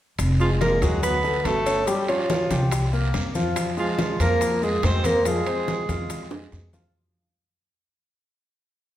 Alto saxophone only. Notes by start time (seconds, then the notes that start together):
0.41 F4
0.61 A#4
0.83 G#4
1.03 B4
1.45 A4
1.87 G4
2.09 F4
3.79 F4
4.22 A#4
4.64 G#4
4.85 C5
5.06 A#4
5.28 G#4